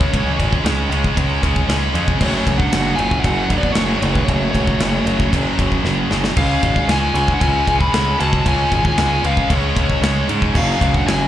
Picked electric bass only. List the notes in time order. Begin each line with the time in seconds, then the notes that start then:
0.14 C#2
0.40 G#1
0.65 C#2
0.89 C#2
1.17 C#2
1.43 C#2
1.69 C#2
1.94 F2
2.21 F#1
2.47 C#2
2.73 F#1
2.99 F#1
3.24 F#1
3.50 F#1
3.76 F#1
4.02 F#1
4.28 F#1
4.55 C#2
4.80 F#1
5.06 F#1
5.33 F#1
5.58 F#1
5.85 F#1
6.11 F#1
6.37 C#2
6.63 G#1
6.88 C#2
7.14 C#2
7.41 C#2
7.67 C#2
7.94 C#2
8.20 C#2
8.45 C#2
8.72 G#1
8.98 C#2
9.25 C#2
9.50 C#2
9.76 C#2
10.02 C#2
10.29 G#2
10.55 F#1
10.81 C#2
11.07 F#1